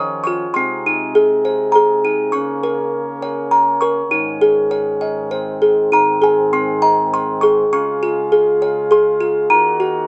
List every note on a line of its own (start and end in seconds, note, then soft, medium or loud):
0.00 0.52 D#3 medium
0.00 0.53 F3 medium
0.00 0.53 C#4 medium
0.00 0.25 F4 medium
0.00 0.56 C#5 medium
0.00 0.56 D#5 medium
0.00 0.22 D#6 medium
0.24 0.56 F4 medium
0.24 0.55 C#6 medium
0.54 2.31 C3 medium
0.54 2.31 G#3 medium
0.54 1.74 C4 medium
0.54 2.31 D#4 medium
0.54 1.77 C6 medium
0.86 2.03 D#4 medium
1.15 1.74 G#4 medium
1.45 2.34 C5 medium
1.72 2.34 G#4 medium
1.72 2.14 A#5 medium
2.05 2.34 D#4 medium
2.32 4.11 C#3 medium
2.32 4.10 A#3 medium
2.32 3.52 C#4 medium
2.32 4.10 C#4 medium
2.32 3.55 C#6 medium
2.63 3.80 A#4 medium
3.22 4.12 C#5 medium
3.51 3.65 A#5 medium
3.81 4.12 A#4 medium
3.81 5.27 C#6 medium
4.11 5.90 G#2 medium
4.11 5.90 D#3 medium
4.11 5.30 C#4 medium
4.11 5.31 D#4 medium
4.41 5.32 G#4 medium
4.71 5.31 C#5 medium
5.01 5.31 D#5 medium
5.31 5.90 C4 medium
5.31 5.92 C5 medium
5.62 5.92 G#4 medium
5.92 7.70 G#2 medium
5.92 7.70 D#3 medium
5.92 7.70 C4 medium
5.92 7.12 D#4 medium
5.92 6.24 A#5 medium
6.22 7.42 G#4 medium
6.22 6.54 G#5 medium
6.53 7.73 C4 medium
6.53 6.83 C6 medium
6.82 7.72 D#5 medium
6.82 7.13 A#5 medium
7.14 7.44 C6 medium
7.41 7.73 G#4 medium
7.41 7.72 C#6 medium
7.73 9.49 C#3 medium
7.73 9.49 G#3 medium
7.73 8.91 C#4 medium
7.73 9.49 F4 medium
7.73 8.58 C#6 medium
8.03 9.19 F4 medium
8.32 8.90 G#4 medium
8.62 9.51 C#5 medium
8.91 9.50 G#4 medium
8.91 9.53 C6 medium
9.20 9.50 F4 medium
9.50 10.07 D#3 medium
9.50 10.07 A#3 medium
9.50 10.07 D#4 medium
9.50 10.07 F#4 medium
9.50 10.05 A#5 medium
9.80 10.07 F#4 medium